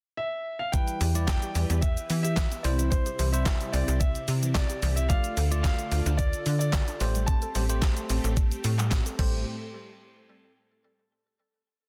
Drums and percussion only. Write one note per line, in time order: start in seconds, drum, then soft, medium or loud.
0.73 kick loud
0.73 closed hi-hat medium
0.73 shaker medium
0.88 closed hi-hat medium
0.88 shaker medium
1.01 open hi-hat medium
1.01 shaker medium
1.15 closed hi-hat medium
1.15 shaker medium
1.28 kick loud
1.28 snare medium
1.28 clap loud
1.28 closed hi-hat medium
1.28 shaker medium
1.42 closed hi-hat medium
1.42 shaker medium
1.55 open hi-hat medium
1.55 shaker medium
1.70 closed hi-hat soft
1.70 shaker medium
1.82 kick loud
1.82 closed hi-hat medium
1.82 shaker medium
1.97 closed hi-hat medium
1.97 shaker medium
2.10 open hi-hat medium
2.10 shaker medium
2.25 closed hi-hat soft
2.25 shaker medium
2.36 kick loud
2.36 snare medium
2.36 clap loud
2.36 closed hi-hat medium
2.36 shaker medium
2.52 closed hi-hat medium
2.52 shaker medium
2.64 open hi-hat medium
2.64 shaker medium
2.79 closed hi-hat medium
2.79 shaker medium
2.92 kick loud
2.92 closed hi-hat medium
2.92 shaker medium
3.06 closed hi-hat medium
3.06 shaker medium
3.19 open hi-hat medium
3.19 shaker medium
3.34 closed hi-hat medium
3.34 shaker medium
3.46 kick loud
3.46 snare medium
3.46 clap loud
3.46 closed hi-hat medium
3.46 shaker medium
3.61 closed hi-hat medium
3.61 shaker soft
3.74 open hi-hat medium
3.74 shaker medium
3.88 closed hi-hat soft
3.88 shaker medium
4.01 kick loud
4.01 closed hi-hat medium
4.01 shaker medium
4.15 closed hi-hat medium
4.15 shaker medium
4.28 open hi-hat medium
4.28 shaker medium
4.43 closed hi-hat soft
4.43 shaker medium
4.55 kick loud
4.55 snare loud
4.55 clap loud
4.55 closed hi-hat medium
4.55 shaker medium
4.70 closed hi-hat medium
4.70 shaker medium
4.82 open hi-hat medium
4.82 shaker medium
4.97 closed hi-hat medium
4.97 shaker medium
5.10 kick loud
5.10 closed hi-hat medium
5.10 shaker medium
5.24 closed hi-hat medium
5.24 shaker medium
5.37 open hi-hat medium
5.37 shaker medium
5.52 closed hi-hat medium
5.52 shaker medium
5.64 kick loud
5.64 snare medium
5.64 clap loud
5.64 closed hi-hat medium
5.64 shaker medium
5.79 closed hi-hat medium
5.79 shaker medium
5.92 open hi-hat medium
5.92 shaker medium
6.06 closed hi-hat medium
6.06 shaker medium
6.19 kick loud
6.19 closed hi-hat medium
6.19 shaker medium
6.33 closed hi-hat medium
6.33 shaker medium
6.46 open hi-hat medium
6.46 shaker medium
6.61 closed hi-hat soft
6.61 shaker medium
6.73 kick loud
6.73 snare loud
6.73 clap loud
6.73 closed hi-hat medium
6.73 shaker medium
6.88 closed hi-hat medium
6.88 shaker medium
7.00 open hi-hat medium
7.00 shaker medium
7.15 closed hi-hat medium
7.15 shaker medium
7.28 kick loud
7.28 closed hi-hat medium
7.28 shaker medium
7.42 closed hi-hat medium
7.42 shaker medium
7.55 open hi-hat medium
7.55 shaker medium
7.69 closed hi-hat medium
7.69 shaker medium
7.82 kick loud
7.82 snare medium
7.82 clap loud
7.82 closed hi-hat medium
7.82 shaker medium
7.97 closed hi-hat medium
7.97 shaker medium
8.09 open hi-hat medium
8.09 shaker medium
8.24 closed hi-hat soft
8.24 shaker medium
8.37 kick loud
8.37 closed hi-hat medium
8.37 shaker medium
8.52 closed hi-hat medium
8.52 shaker medium
8.64 open hi-hat medium
8.64 shaker medium
8.79 clap medium
8.79 closed hi-hat soft
8.79 shaker medium
8.91 kick loud
8.91 snare medium
8.91 clap loud
8.91 closed hi-hat medium
8.91 shaker medium
9.06 closed hi-hat medium
9.06 shaker medium
9.19 kick loud
9.19 crash medium